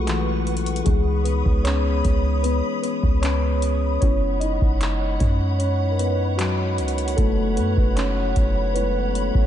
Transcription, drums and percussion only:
0.07 clap loud
0.07 closed hi-hat medium
0.47 closed hi-hat soft
0.57 closed hi-hat medium
0.66 closed hi-hat medium
0.76 closed hi-hat medium
0.86 kick loud
0.86 closed hi-hat medium
1.25 closed hi-hat medium
1.46 kick medium
1.65 clap loud
1.65 closed hi-hat medium
2.05 kick medium
2.05 closed hi-hat medium
2.44 closed hi-hat medium
2.83 closed hi-hat medium
3.03 kick medium
3.23 clap loud
3.23 closed hi-hat medium
3.62 closed hi-hat medium
4.02 kick loud
4.02 closed hi-hat medium
4.41 closed hi-hat medium
4.61 kick medium
4.81 clap medium
4.81 closed hi-hat medium
5.20 kick medium
5.20 closed hi-hat medium
5.60 closed hi-hat medium
5.99 closed hi-hat medium
6.39 clap loud
6.39 closed hi-hat medium
6.78 closed hi-hat soft
6.88 closed hi-hat medium
6.98 closed hi-hat medium
7.08 closed hi-hat medium
7.18 kick loud
7.18 closed hi-hat medium
7.57 closed hi-hat medium
7.77 kick medium
7.97 clap loud
7.97 closed hi-hat medium
8.36 kick medium
8.36 closed hi-hat medium
8.76 closed hi-hat medium
9.15 closed hi-hat medium
9.35 kick medium

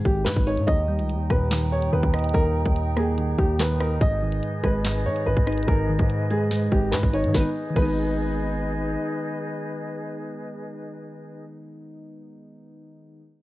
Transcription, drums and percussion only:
0.05 kick medium
0.26 snare loud
0.26 clap loud
0.37 kick loud
0.47 closed hi-hat medium
0.47 open hi-hat medium
0.57 closed hi-hat soft
0.68 kick loud
0.68 closed hi-hat medium
0.99 closed hi-hat medium
1.09 closed hi-hat medium
1.30 kick medium
1.30 cross-stick medium
1.30 closed hi-hat medium
1.51 snare loud
1.51 clap medium
1.82 closed hi-hat medium
2.03 kick medium
2.14 cross-stick loud
2.14 closed hi-hat medium
2.19 closed hi-hat medium
2.24 closed hi-hat medium
2.29 closed hi-hat medium
2.34 kick loud
2.34 closed hi-hat medium
2.66 kick loud
2.66 closed hi-hat medium
2.76 closed hi-hat medium
2.97 cross-stick medium
2.97 closed hi-hat medium
3.18 closed hi-hat medium
3.39 kick medium
3.59 snare loud
3.59 clap loud
3.80 cross-stick medium
3.80 closed hi-hat medium
4.01 kick loud
4.01 closed hi-hat medium
4.32 closed hi-hat medium
4.43 closed hi-hat medium
4.64 kick medium
4.64 cross-stick medium
4.64 closed hi-hat medium
4.84 snare loud
4.84 clap medium
5.16 closed hi-hat medium
5.37 kick loud
5.47 cross-stick loud
5.47 closed hi-hat medium
5.52 closed hi-hat medium
5.57 closed hi-hat medium
5.63 closed hi-hat medium
5.68 kick loud
5.68 closed hi-hat medium
5.99 kick loud
5.99 closed hi-hat medium
6.09 closed hi-hat medium
6.30 closed hi-hat medium
6.51 snare medium
6.51 closed hi-hat medium
6.72 kick medium
6.92 snare loud
6.92 clap loud
7.03 kick medium
7.14 closed hi-hat medium
7.14 open hi-hat medium
7.24 closed hi-hat medium
7.34 kick loud
7.34 snare medium
7.76 kick loud
7.76 crash medium

